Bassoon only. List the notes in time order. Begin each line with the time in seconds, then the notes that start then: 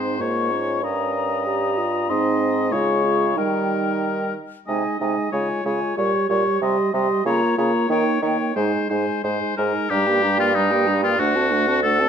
Already playing: G#2
0.20 G#2
0.83 G2
2.10 G#2
2.73 C#3
3.37 D#3
4.68 C3
5.01 C3
5.33 C#3
5.65 C#3
5.97 A#2
6.29 A#2
6.61 C3
6.93 C3
7.25 C#3
7.58 C#3
7.90 D#3
8.22 D#3
8.56 G#2
8.90 G#2
9.24 G#2
9.58 G#2
9.91 G2
11.19 D2